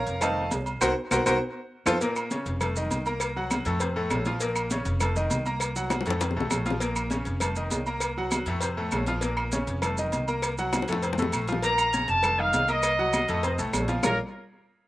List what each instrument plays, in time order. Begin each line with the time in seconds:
Already playing: grand piano A#4 C#5 F5 A#5
0.06 upright bass F1, cowbell, maracas
0.21 grand piano D#3 A3 C4 A4 D#5 F5 A5, cowbell, high conga, low conga, low agogo, claves, maracas
0.37 high conga
0.51 upright bass C2, cowbell, high conga, low timbale, low agogo, maracas
0.66 high conga, low agogo, maracas
0.81 upright bass C2, grand piano F#4 A#4 C5, cowbell, high conga, high timbale, claves, maracas
1.11 upright bass C2, grand piano F#4 A#4 C5, cowbell, high conga, high timbale, claves, maracas
1.26 upright bass C2, grand piano F#4 A#4 C5, cowbell, high conga, high timbale, claves, maracas
1.86 upright bass F2, grand piano F4 A4 C5, cowbell, high conga, high timbale, claves, maracas
2.01 grand piano A#2 A#3 A#4, cowbell, high conga, low agogo, maracas
2.16 high conga, low agogo, claves, maracas
2.31 grand piano C#3 C#4 C#5, cowbell, high conga, maracas
2.46 upright bass F1, cowbell, high conga, maracas
2.61 grand piano A3 A4 A5, cowbell, high conga, low conga, low agogo, claves, maracas
2.76 grand piano D#3 D#4 D#5, high conga, low conga, maracas
2.91 upright bass C2, cowbell, high conga, low agogo, maracas
3.06 grand piano A#3 A#4 A#5, high conga, low agogo, maracas
3.20 cowbell, high conga, low agogo, claves, maracas
3.36 grand piano F#3 F#4 F#5, high conga
3.50 cowbell, high conga, low agogo, claves, maracas
3.65 upright bass F2, grand piano A2 A3 A4, cowbell, high conga, maracas
3.80 grand piano C3 C4 C5, cowbell, high conga, low agogo, maracas
3.96 grand piano A2 A3 A4, high conga
4.10 upright bass A#1, cowbell, high conga, low timbale, low agogo, claves, maracas
4.25 grand piano F3 F4 F5, cowbell, high conga, maracas
4.40 grand piano A#2 A#3 A#4, cowbell, high conga, low agogo, maracas
4.56 high conga, low agogo, claves, maracas
4.70 grand piano C#3 C#4 C#5, cowbell, high conga, maracas
4.85 upright bass F1, cowbell, high conga, maracas
5.00 grand piano A3 A4 A5, cowbell, high conga, low conga, low agogo, claves, maracas
5.16 grand piano D#3 D#4 D#5, high conga, low conga, maracas
5.30 upright bass C2, cowbell, high conga, low agogo, maracas
5.46 grand piano A#3 A#4 A#5, high conga, low agogo, maracas
5.60 cowbell, high conga, low agogo, claves, maracas
5.75 grand piano F#3 F#4 F#5, high conga, maracas
5.90 cowbell, high bongo, high conga, low agogo, claves, maracas
6.01 high bongo
6.05 upright bass F2, grand piano A2 A3 A4, cowbell, high conga, maracas
6.10 high bongo
6.20 grand piano C3 C4 C5, cowbell, high bongo, high conga, low agogo, maracas
6.31 low bongo
6.35 upright bass C2, grand piano A2 A3 A4, high conga
6.40 low bongo
6.50 upright bass A#1, cowbell, low bongo, high conga, low timbale, low agogo, claves, maracas
6.65 grand piano F3 F4 F5, cowbell, high conga, maracas
6.70 low bongo
6.80 grand piano A#2 A#3 A#4, cowbell, high conga, low agogo, maracas
6.96 high conga, low agogo, claves, maracas
7.10 grand piano C#3 C#4 C#5, cowbell, high conga, maracas
7.25 upright bass F1, cowbell, high conga, maracas
7.40 grand piano A3 A4 A5, cowbell, high conga, low conga, low agogo, claves, maracas
7.56 grand piano D#3 D#4 D#5, high conga, maracas
7.70 upright bass C2, cowbell, high conga, low timbale, low agogo, maracas
7.86 grand piano A#3 A#4 A#5, high conga, low agogo, maracas
8.00 cowbell, high conga, low agogo, claves, maracas
8.17 grand piano F#3 F#4 F#5, high conga
8.31 cowbell, high conga, low agogo, claves, maracas
8.46 upright bass F2, grand piano A2 A3 A4, cowbell, high conga, maracas
8.61 grand piano C3 C4 C5, cowbell, high conga, low agogo, maracas
8.77 grand piano A2 A3 A4, high conga
8.91 upright bass A#1, cowbell, high conga, low timbale, low agogo, claves, maracas
9.06 grand piano F3 F4 F5, cowbell, high conga, maracas
9.21 grand piano A#2 A#3 A#4, cowbell, high conga, low agogo, maracas
9.37 high conga, low agogo, claves
9.52 grand piano C#3 C#4 C#5, cowbell, high conga, maracas
9.67 upright bass F1, cowbell, high conga, maracas
9.82 grand piano A3 A4 A5, cowbell, high conga, low conga, low agogo, claves, maracas
9.98 grand piano D#3 D#4 D#5, high conga, low conga, maracas
10.12 upright bass C2, cowbell, high conga, low agogo, maracas
10.28 grand piano A#3 A#4 A#5, high conga, low agogo, maracas
10.42 cowbell, high conga, low agogo, claves, maracas
10.58 grand piano F#3 F#4 F#5, high conga, maracas
10.73 cowbell, high bongo, high conga, low agogo, claves, maracas
10.82 high bongo
10.88 upright bass F2, grand piano A2 A3 A4, cowbell, high conga, maracas
10.92 high bongo
11.03 grand piano C3 C4 C5, cowbell, high conga, low agogo, maracas
11.13 high bongo
11.18 grand piano A2 A3 A4, high conga, maracas
11.22 low bongo
11.32 upright bass A#1, cowbell, low agogo, claves, maracas
11.47 grand piano F3 F4 F5, cowbell, low conga, maracas
11.52 low bongo
11.62 grand piano A#2 A#3 A#4, trumpet section A#5, cowbell, high conga, low agogo, maracas
11.78 high conga, low agogo, claves, maracas
11.93 grand piano C#3 C#4 C#5, cowbell, high conga, maracas
12.08 upright bass F1, trumpet section A5, cowbell, high conga, maracas
12.23 grand piano A3 A4 A5, cowbell, high conga, low conga, low agogo, claves, maracas
12.38 grand piano D#3 D#4 D#5, trumpet section F5, high conga, low conga
12.53 upright bass C2, cowbell, high conga, low timbale, low agogo, maracas
12.68 grand piano A#3 A#4 A#5, trumpet section D#5, high conga, low agogo, maracas
12.83 cowbell, high conga, low agogo, claves, maracas
12.99 grand piano F#3 F#4 F#5, high conga
13.13 cowbell, high conga, low agogo, claves, maracas
13.28 upright bass F2, grand piano A2 A3 A4, cowbell, high conga, maracas
13.43 grand piano C3 C4 C5, cowbell, high conga, low agogo, maracas
13.58 upright bass C2, grand piano A2 A3 A4, high conga, maracas
13.73 upright bass A#1, cowbell, high conga, low timbale, low agogo, claves, maracas
13.88 grand piano F3 F4 F5, cowbell, high conga, maracas
14.03 upright bass A#1, grand piano A#3 F4 A#4 C#5 F5 A#5, trumpet section A#4, low bongo, low conga, low timbale, claves, maracas